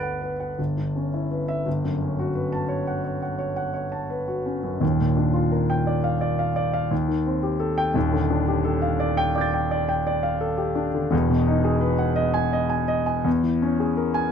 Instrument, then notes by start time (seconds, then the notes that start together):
grand piano
Already playing: G1 D2 B3 F#4 A4 B4 D5 F#5 B5 F#6 A6 D7
0.03 F#5
0.22 B4
0.40 F#5
0.59 G1
0.77 G2
0.96 C#4
1.14 E4
1.31 B4
1.48 E5
1.66 G1
1.84 F#2
2.02 C#4
2.19 F#4
2.35 B4
2.52 A5
2.68 C#5
2.87 F#5
3.04 C#5
3.22 F#5
3.39 C#5
3.56 F#5
3.74 C#5
3.92 A5
4.10 B4
4.28 F#4
4.46 C#4
4.63 F#2
4.80 D#1 D#2
5.00 A#2
5.17 D4
5.34 F4
5.52 A#4
5.70 G5
5.87 D5
6.04 F5
6.21 D5
6.39 F5
6.56 D5
6.73 F5
6.91 D#2
7.08 D#3
7.26 C4
7.43 G4
7.60 A4
7.78 G5
7.94 D#1 D#2
8.13 D3
8.30 D4
8.48 G4
8.65 A4
8.82 F5
9.00 D5
9.17 G5
9.35 D5 D6 G6
9.41 A6
9.54 G5
9.71 D5
9.89 G5
10.07 D5
10.23 F5
10.41 A4
10.58 G4
10.75 D4
10.94 D3
11.11 E1 E2
11.29 B2
11.47 D#4
11.64 G#4
11.81 B4
11.98 F#5
12.16 D#5
12.34 G#5
12.53 D#5
12.70 G#5
12.88 D#5
13.06 G#5
13.24 E2
13.43 E3
13.62 C#4
13.80 G#4
13.97 A#4
14.14 G#5